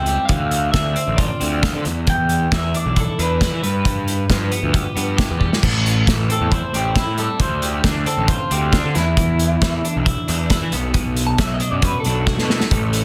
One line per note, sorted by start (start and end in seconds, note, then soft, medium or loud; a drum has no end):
0.00 0.16 C#2 medium
0.00 0.30 C4 medium
0.00 0.30 E4 medium
0.00 0.25 G5 loud
0.06 0.30 G3 medium
0.06 closed hi-hat medium
0.25 0.69 D2 loud
0.25 0.69 F5 loud
0.25 kick loud
0.25 closed hi-hat medium
0.30 0.74 D3 medium
0.51 closed hi-hat medium
0.72 0.94 D2 medium
0.72 1.86 D3 medium
0.72 1.14 E5 medium
0.72 kick loud
0.72 snare loud
0.72 closed hi-hat medium
0.96 1.39 C4 medium
0.96 closed hi-hat medium
1.07 1.28 A1 medium
1.16 1.61 F4 medium
1.16 1.80 D5 medium
1.16 kick loud
1.16 closed hi-hat medium
1.40 1.71 D2 medium
1.40 1.85 C4 medium
1.40 closed hi-hat medium
1.63 1.85 F4 medium
1.63 kick loud
1.63 snare loud
1.63 closed hi-hat medium
1.75 1.85 D3 medium
1.85 2.45 E2 loud
1.85 2.06 E2 medium
1.85 closed hi-hat medium
2.07 3.19 E2 medium
2.07 2.50 G5 loud
2.07 kick loud
2.07 closed hi-hat medium
2.29 closed hi-hat medium
2.52 2.72 E2 medium
2.52 3.63 E3 medium
2.52 2.74 E5 loud
2.52 kick loud
2.52 snare loud
2.52 closed hi-hat medium
2.74 3.18 D4 medium
2.74 2.98 D5 medium
2.74 closed hi-hat medium
2.86 3.06 B1 medium
2.96 3.40 E4 medium
2.96 3.19 A4 medium
2.96 kick loud
2.96 closed hi-hat medium
3.19 3.49 E2 loud
3.19 3.63 D4 medium
3.19 3.61 B4 medium
3.19 closed hi-hat medium
3.41 3.64 E4 medium
3.41 kick loud
3.41 snare loud
3.41 closed hi-hat medium
3.53 3.62 E3 medium
3.63 3.84 G2 medium
3.63 4.23 G2 medium
3.63 5.15 B4 medium
3.63 closed hi-hat medium
3.85 4.97 G2 medium
3.85 kick loud
3.85 closed hi-hat medium
4.08 closed hi-hat medium
4.30 4.50 G2 medium
4.30 5.41 F3 medium
4.30 kick loud
4.30 snare loud
4.30 closed hi-hat medium
4.52 4.94 B3 medium
4.52 closed hi-hat medium
4.63 4.83 D2 medium
4.74 5.16 G4 medium
4.74 kick loud
4.74 closed hi-hat medium
4.96 5.26 G2 medium
4.96 5.63 B3 medium
4.96 closed hi-hat medium
5.17 5.62 G4 medium
5.17 kick loud
5.17 snare loud
5.17 closed hi-hat medium
5.31 5.50 E2 medium
5.40 5.63 G3 medium
5.40 kick medium
5.53 snare medium
5.63 6.03 A1 medium
5.63 6.74 A2 medium
5.63 kick loud
5.63 crash loud
5.86 closed hi-hat medium
6.07 6.28 A1 medium
6.07 7.18 E3 medium
6.07 kick loud
6.07 snare loud
6.07 closed hi-hat medium
6.29 6.73 C4 medium
6.29 6.52 A4 medium
6.29 closed hi-hat medium
6.41 6.61 E2 medium
6.52 6.95 E4 medium
6.52 6.75 C5 medium
6.52 kick loud
6.52 closed hi-hat medium
6.74 7.04 A1 medium
6.74 7.41 C4 medium
6.74 6.96 G4 medium
6.74 closed hi-hat medium
6.96 7.40 E4 medium
6.96 7.19 E4 medium
6.96 kick loud
6.96 snare loud
6.96 closed hi-hat medium
7.06 7.27 A2 medium
7.18 7.40 G3 medium
7.18 7.41 A4 medium
7.18 closed hi-hat medium
7.39 7.80 D2 medium
7.39 7.83 D3 medium
7.39 7.62 C5 medium
7.39 kick loud
7.39 closed hi-hat medium
7.62 7.85 G4 medium
7.62 closed hi-hat medium
7.84 8.04 D2 medium
7.84 8.95 D3 medium
7.84 8.07 D4 medium
7.84 kick loud
7.84 snare loud
7.84 closed hi-hat medium
8.06 8.50 C4 medium
8.06 8.29 A4 medium
8.06 closed hi-hat medium
8.17 8.38 A1 medium
8.28 8.71 F4 medium
8.28 8.51 C5 medium
8.28 kick loud
8.28 closed hi-hat loud
8.51 8.81 D2 medium
8.51 8.95 C4 medium
8.51 8.73 G4 medium
8.51 closed hi-hat medium
8.72 8.95 D4 medium
8.72 8.95 F4 medium
8.72 kick loud
8.72 snare loud
8.72 closed hi-hat medium
8.85 8.95 D3 medium
8.95 9.16 E2 medium
8.95 9.55 E2 medium
8.95 9.81 E4 medium
8.95 snare soft
8.95 closed hi-hat medium
9.17 10.28 E2 medium
9.17 kick loud
9.17 closed hi-hat medium
9.39 closed hi-hat medium
9.62 9.82 E2 medium
9.62 10.73 E3 medium
9.62 kick loud
9.62 snare loud
9.62 closed hi-hat medium
9.85 10.27 D4 medium
9.85 closed hi-hat medium
9.96 10.16 B1 medium
10.06 10.49 E4 medium
10.06 kick loud
10.06 closed hi-hat medium
10.28 10.58 E2 loud
10.28 10.73 D4 medium
10.28 closed hi-hat medium
10.50 10.73 E4 medium
10.50 kick loud
10.50 snare loud
10.50 closed hi-hat medium
10.62 10.72 E3 medium
10.72 11.32 B1 medium
10.72 10.93 B2 medium
10.72 closed hi-hat medium
10.94 12.05 B2 medium
10.94 kick loud
10.94 closed hi-hat medium
11.17 closed hi-hat medium
11.26 11.40 A5 medium
11.38 11.59 B1 medium
11.38 12.50 F#3 medium
11.38 11.53 E5 medium
11.38 kick loud
11.38 snare loud
11.38 closed hi-hat loud
11.54 11.68 D#5 medium
11.60 12.05 D4 medium
11.60 closed hi-hat medium
11.71 11.92 F#2 medium
11.71 11.84 D5 medium
11.82 12.27 F#4 medium
11.82 11.99 B4 medium
11.82 kick loud
11.82 closed hi-hat loud
12.00 13.04 A4 medium
12.04 12.36 B1 loud
12.04 12.73 D4 medium
12.04 closed hi-hat medium
12.27 12.72 F#4 medium
12.27 kick loud
12.27 snare medium
12.38 12.59 B2 medium
12.38 snare medium
12.50 13.04 A3 medium
12.50 snare medium
12.60 snare medium
12.71 13.04 A1 medium
12.71 13.04 A2 medium
12.71 kick loud
12.71 closed hi-hat medium
12.93 closed hi-hat medium